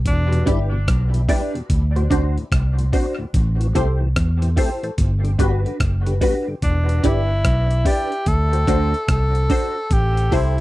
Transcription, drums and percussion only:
0.06 kick, closed hi-hat
0.33 closed hi-hat
0.47 kick, closed hi-hat
0.88 kick, cross-stick, closed hi-hat
1.14 closed hi-hat
1.29 kick, open hi-hat
1.55 closed hi-hat
1.70 kick, closed hi-hat
1.96 closed hi-hat
2.11 kick, closed hi-hat
2.38 closed hi-hat
2.52 kick, cross-stick, closed hi-hat
2.79 closed hi-hat
2.93 kick, open hi-hat
3.34 kick, closed hi-hat
3.61 closed hi-hat
3.75 kick, closed hi-hat
4.16 kick, cross-stick, closed hi-hat
4.42 closed hi-hat
4.57 kick, open hi-hat
4.83 closed hi-hat
4.98 kick, closed hi-hat
5.25 closed hi-hat
5.39 kick, closed hi-hat
5.66 closed hi-hat
5.80 kick, cross-stick, closed hi-hat
6.06 closed hi-hat
6.21 kick, open hi-hat
6.62 kick, closed hi-hat
6.89 closed hi-hat
7.04 kick, closed hi-hat
7.45 kick, cross-stick, closed hi-hat
7.71 closed hi-hat
7.86 kick, open hi-hat
8.12 closed hi-hat
8.26 kick, closed hi-hat
8.53 closed hi-hat
8.67 kick, closed hi-hat
8.94 closed hi-hat
9.08 kick, cross-stick, closed hi-hat
9.35 closed hi-hat
9.50 kick, open hi-hat
9.91 kick, closed hi-hat
10.17 closed hi-hat
10.32 kick, open hi-hat

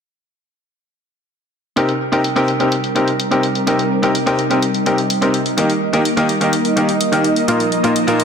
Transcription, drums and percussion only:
1.77 closed hi-hat
1.89 closed hi-hat
2.12 closed hi-hat
2.24 closed hi-hat
2.36 closed hi-hat
2.48 closed hi-hat
2.60 closed hi-hat
2.72 closed hi-hat
2.84 closed hi-hat
2.96 closed hi-hat
3.08 closed hi-hat
3.20 closed hi-hat
3.31 closed hi-hat
3.43 closed hi-hat
3.55 closed hi-hat
3.67 closed hi-hat
3.79 closed hi-hat
4.03 closed hi-hat
4.15 closed hi-hat
4.27 closed hi-hat
4.39 closed hi-hat
4.51 closed hi-hat
4.62 closed hi-hat
4.74 closed hi-hat
4.86 closed hi-hat
4.98 closed hi-hat
5.10 closed hi-hat
5.22 closed hi-hat
5.34 closed hi-hat
5.46 closed hi-hat
5.58 closed hi-hat
5.70 closed hi-hat
5.93 closed hi-hat
6.05 closed hi-hat
6.17 closed hi-hat
6.29 closed hi-hat
6.41 closed hi-hat
6.53 closed hi-hat
6.65 closed hi-hat
6.77 closed hi-hat
6.89 closed hi-hat
7.01 closed hi-hat
7.13 closed hi-hat
7.24 closed hi-hat
7.36 closed hi-hat
7.48 closed hi-hat
7.60 closed hi-hat
7.72 closed hi-hat
7.84 closed hi-hat
7.96 closed hi-hat
8.08 closed hi-hat
8.20 closed hi-hat

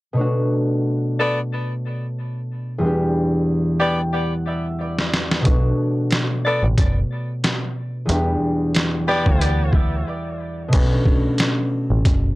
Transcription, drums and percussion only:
4.99 snare
5.14 snare
5.32 snare
5.45 kick, closed hi-hat
6.11 snare, closed hi-hat
6.78 kick, closed hi-hat
7.44 snare, closed hi-hat
8.09 closed hi-hat
8.75 snare, closed hi-hat
9.09 snare
9.26 kick
9.41 closed hi-hat
9.73 kick
10.73 kick, closed hi-hat, crash
11.06 kick
11.38 snare, closed hi-hat
12.05 kick, closed hi-hat

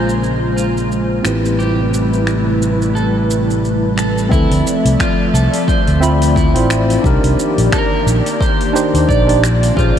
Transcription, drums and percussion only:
0.09 shaker
0.24 shaker
0.58 shaker
0.77 shaker
0.92 shaker
1.25 finger snap, shaker
1.45 shaker
1.60 shaker
1.94 shaker
2.13 shaker
2.27 finger snap, shaker
2.62 shaker
2.82 shaker
2.96 shaker
3.30 shaker
3.50 shaker
3.65 shaker
3.98 finger snap, shaker
4.18 shaker
4.32 kick, shaker
4.52 open hi-hat
4.67 shaker
4.86 open hi-hat, shaker
5.00 finger snap, kick, shaker
5.35 shaker
5.54 open hi-hat, shaker
5.68 kick, shaker
5.87 open hi-hat
6.03 shaker
6.22 open hi-hat, shaker
6.36 kick, shaker
6.56 open hi-hat
6.70 finger snap, shaker
6.90 open hi-hat, shaker
7.04 kick, shaker
7.24 open hi-hat
7.39 shaker
7.58 open hi-hat, shaker
7.72 finger snap, kick, shaker
8.08 shaker
8.26 open hi-hat, shaker
8.41 kick, shaker
8.61 open hi-hat
8.76 shaker
8.95 open hi-hat, shaker
9.09 kick, shaker
9.29 open hi-hat
9.44 finger snap, shaker
9.63 open hi-hat, shaker
9.77 kick, shaker

